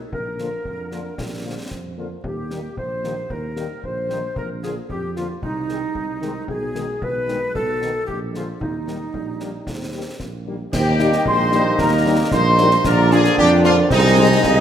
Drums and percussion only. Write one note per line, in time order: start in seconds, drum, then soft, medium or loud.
0.12 concert bass drum medium
0.39 snare soft
0.65 concert bass drum medium
0.92 snare soft
1.18 concert bass drum medium
1.18 snare soft
1.71 concert bass drum medium
1.71 snare soft
2.24 concert bass drum medium
2.51 snare soft
2.77 concert bass drum medium
3.04 snare soft
3.30 concert bass drum medium
3.56 snare soft
3.83 concert bass drum medium
4.10 snare soft
4.36 concert bass drum medium
4.63 snare soft
4.89 concert bass drum medium
5.16 snare soft
5.43 concert bass drum medium
5.69 snare soft
5.95 concert bass drum medium
6.22 snare soft
6.48 concert bass drum medium
6.75 snare soft
7.02 concert bass drum medium
7.29 snare soft
7.55 concert bass drum medium
7.82 snare soft
8.08 concert bass drum medium
8.35 snare soft
8.61 concert bass drum medium
8.88 snare soft
9.14 concert bass drum medium
9.40 snare soft
9.67 concert bass drum medium
9.67 snare soft
10.20 concert bass drum medium
10.20 snare soft
10.73 concert bass drum loud
10.73 snare medium
10.73 crash medium
10.99 snare medium
11.13 snare medium
11.26 concert bass drum medium
11.52 snare medium
11.78 concert bass drum loud
11.78 snare medium
12.31 concert bass drum medium
12.31 snare medium
12.58 snare medium
12.71 snare medium
12.84 concert bass drum loud
12.84 snare medium
12.84 crash soft
13.11 snare medium
13.24 snare medium
13.38 concert bass drum medium
13.64 snare medium
13.90 concert bass drum loud
13.90 snare medium
14.44 concert bass drum medium
14.44 snare medium